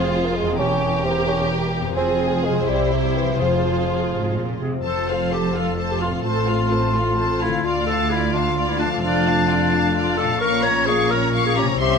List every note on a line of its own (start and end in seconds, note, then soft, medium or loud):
0.00 0.57 F1 soft
0.00 0.52 F2 soft
0.00 0.57 F2 medium
0.00 0.27 C4 medium
0.00 0.55 C4 soft
0.00 0.56 F4 soft
0.00 0.57 F4 soft
0.00 0.58 F4 medium
0.00 0.56 G#4 soft
0.00 0.59 G#4 soft
0.00 0.56 C5 soft
0.25 0.38 A#3 medium
0.36 0.58 G#3 medium
0.42 1.91 E2 soft
0.46 1.93 A#3 soft
0.51 1.95 G4 soft
0.56 1.98 E1 soft
0.56 1.04 C#4 medium
0.56 1.97 A#4 soft
0.60 1.98 E2 medium
0.60 1.95 G4 medium
0.60 1.94 G4 soft
0.60 1.94 A#4 soft
1.05 1.28 C4 medium
1.28 1.51 C#4 medium
1.80 2.61 F2 soft
1.85 2.53 C4 soft
1.89 2.66 F4 soft
1.94 2.46 C4 medium
1.94 2.68 G#4 soft
1.94 2.66 G#4 soft
1.98 2.67 F1 soft
1.98 2.67 F2 medium
1.98 2.64 F4 soft
1.98 2.64 G#4 soft
1.98 4.61 C5 soft
2.45 2.70 G#3 medium
2.50 3.33 C3 soft
2.55 3.25 C4 soft
2.59 3.38 E4 soft
2.64 3.40 E4 soft
2.64 3.40 G4 soft
2.68 3.39 C2 soft
2.68 2.92 G3 medium
2.68 3.36 E4 soft
2.68 3.36 G4 soft
2.93 3.19 C3 medium
3.17 3.43 E3 medium
3.22 4.66 F3 soft
3.26 4.70 C4 soft
3.31 4.75 F4 soft
3.35 4.85 G#4 soft
3.40 4.65 F1 soft
3.40 4.09 F2 soft
3.40 4.62 F3 medium
3.40 4.61 F4 soft
3.40 4.49 F4 soft
3.40 4.61 G#4 soft
4.13 4.35 G#2 soft
4.37 4.62 A#2 medium
4.61 4.85 C3 soft
4.61 4.72 G#4 soft
4.67 8.57 F3 soft
4.72 6.10 C4 soft
4.76 6.15 F4 soft
4.80 6.19 A4 soft
4.84 6.21 F1 soft
4.84 6.21 F2 soft
4.84 7.61 C4 soft
4.84 7.61 F4 soft
4.84 5.08 A4 medium
4.84 5.07 A4 soft
4.84 5.07 C5 soft
4.84 5.07 A5 soft
5.08 5.32 F4 soft
5.08 5.32 A4 soft
5.08 5.32 C5 medium
5.08 5.32 F5 soft
5.31 5.58 G4 medium
5.31 5.55 A4 soft
5.31 5.55 C5 soft
5.31 5.56 A5 soft
5.54 5.78 F4 soft
5.54 5.79 A4 soft
5.54 5.93 A4 soft
5.54 5.79 F5 soft
5.78 6.00 A4 soft
5.78 6.00 C5 soft
5.78 6.00 A5 soft
5.91 6.01 G4 medium
6.01 6.24 F4 soft
6.01 6.12 F4 soft
6.01 6.26 A4 soft
6.01 6.25 F5 soft
6.07 7.58 A2 soft
6.11 7.60 C4 soft
6.16 7.55 F4 soft
6.20 7.65 A1 soft
6.20 7.59 A4 soft
6.25 7.65 A2 soft
6.25 7.43 F4 medium
6.25 6.46 A4 soft
6.25 6.47 C5 soft
6.25 6.47 A5 soft
6.48 6.72 F4 soft
6.48 6.71 A4 soft
6.48 6.71 F5 soft
6.71 6.95 A4 soft
6.71 6.95 C5 soft
6.71 6.95 A5 soft
6.95 7.18 F4 soft
6.95 7.18 A4 soft
6.95 7.18 F5 soft
7.18 7.40 A4 soft
7.18 7.40 C5 soft
7.18 7.40 A5 soft
7.42 7.67 E4 medium
7.42 7.64 F4 soft
7.42 7.66 A4 soft
7.42 7.65 F5 soft
7.47 8.96 D3 soft
7.51 8.89 A3 soft
7.56 8.93 F4 soft
7.60 10.37 F4 soft
7.60 8.97 A4 soft
7.64 9.00 D2 soft
7.64 9.01 D2 soft
7.64 10.37 A3 soft
7.64 7.87 F4 soft
7.64 7.86 F4 soft
7.64 7.87 D5 soft
7.64 7.87 F5 soft
7.87 8.12 D4 soft
7.87 8.12 A4 medium
7.87 8.12 F5 soft
7.87 8.12 A5 soft
8.11 8.35 E4 medium
8.11 8.35 F4 soft
8.11 8.36 D5 soft
8.11 8.35 F5 soft
8.33 8.57 D4 soft
8.33 8.70 F4 medium
8.33 8.58 F5 soft
8.33 8.58 A5 soft
8.57 8.78 F4 soft
8.57 8.80 D5 soft
8.57 8.79 F5 soft
8.69 8.79 E4 soft
8.79 8.90 D4 medium
8.79 9.03 D4 soft
8.79 9.04 F5 soft
8.79 9.03 A5 soft
8.85 11.73 F3 soft
8.90 10.37 A3 soft
8.94 10.31 F4 soft
8.99 10.16 D4 medium
8.99 10.41 A4 soft
9.03 10.39 F1 soft
9.03 10.39 F2 medium
9.03 9.24 F4 soft
9.03 9.25 D5 soft
9.03 9.25 F5 soft
9.26 9.49 D4 soft
9.26 9.50 F5 soft
9.26 9.49 A5 soft
9.49 9.72 F4 soft
9.49 9.73 D5 soft
9.49 9.72 F5 soft
9.72 9.95 D4 soft
9.72 9.96 F5 soft
9.72 9.95 A5 soft
9.96 10.17 F4 soft
9.96 10.18 D5 soft
9.96 10.17 F5 soft
10.17 10.42 D4 soft
10.17 10.40 A4 medium
10.17 10.41 F5 soft
10.17 10.42 A5 soft
10.24 11.73 A#2 soft
10.28 11.66 A#3 soft
10.32 11.78 F4 soft
10.37 10.62 A#3 soft
10.37 11.98 C#4 medium
10.37 11.63 F4 medium
10.37 10.65 A#4 medium
10.37 11.75 C#5 soft
10.37 10.62 C#6 soft
10.42 11.78 A#1 soft
10.42 11.78 A#2 medium
10.42 10.63 F5 soft
10.63 10.87 C#4 soft
10.63 10.88 C#5 medium
10.63 10.88 C#5 soft
10.63 10.87 A#5 soft
10.86 11.10 A#3 soft
10.86 11.12 G#4 medium
10.86 11.11 F5 soft
10.86 11.10 C#6 soft
11.10 11.34 C#4 soft
11.10 11.46 A#4 medium
11.10 11.34 C#5 medium
11.10 11.34 A#5 soft
11.34 11.56 A#3 soft
11.34 11.56 F5 soft
11.34 11.55 C#6 soft
11.46 11.51 G#4 medium
11.56 11.80 C#4 soft
11.56 11.67 G4 medium
11.56 11.80 C#5 soft
11.56 11.80 A#5 soft
11.62 11.98 C3 soft
11.67 11.98 A#3 soft
11.71 11.98 E4 soft
11.76 11.98 C#5 soft
11.80 11.98 C2 medium
11.80 11.98 C2 soft
11.80 11.98 C4 medium
11.80 11.98 E4 medium
11.80 11.98 G4 medium
11.80 11.98 E5 soft
11.80 11.98 C6 medium